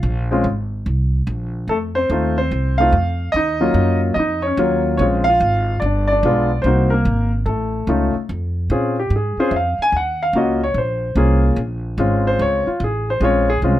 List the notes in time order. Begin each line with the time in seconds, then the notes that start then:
Already playing: F4 F5
0.03 A#1
0.31 G#3 C4 C#4 F4
0.44 G#1
0.86 C2
1.27 A#1
1.68 F2 A3 A4
1.95 C4 C5
2.10 D#2 A3 C4 D#4 F4
2.38 C4 C5
2.51 C2
2.78 A3 C4 D#4 F4 F5
2.92 F2
3.32 D#2 D#5
3.36 D#4
3.61 F#3 A#3 C#4 F4
3.74 F#2
4.14 F2 D#5
4.19 D#4
4.42 C#5
4.47 C#4
4.57 D#2 F#3 A#3 C#4 F4
4.97 A#1 G#3 C4 C#4 F4 C#5
5.24 F5
5.29 F4
5.40 G#1
5.80 G1 D5
5.85 D4
6.08 D5
6.12 D4
6.23 B1 G#3 B3 D4 F4
6.62 C2 A#3 C5
6.66 C4 D#4 F#4
6.90 A#3 A#4
7.05 G#1
7.46 A1 A3 A4
7.87 C#2 A3 C#4 D#4 F4
8.15 muted upright bass stroke
8.29 F2
8.70 A#2 C4 C#4 F4 G#4
8.99 G4
9.10 G#2
9.16 G#4
9.37 C4 C#4 F4 G#4 C5, muted upright bass stroke
9.51 F2 E5
9.56 F5
9.78 G#5, muted upright bass stroke
9.92 D#2
9.96 F#5
10.23 F5
10.33 C#2 A#3 C#4 F4 F#4
10.38 D#5
10.64 C#5
10.74 A#1 C5
11.15 C2 A#3 C#4 F4 G#4
11.56 A#1
11.98 G#1 G#3 C4 C#4 F4
12.27 C5
12.39 C#2 C#5
12.67 F4, muted upright bass stroke
12.80 A1
12.84 G#4
13.10 C5
13.20 A#1 G#3 C4 C#4 F4 C#5
13.50 G#4
13.62 C2 G#3 C4 C#4 F4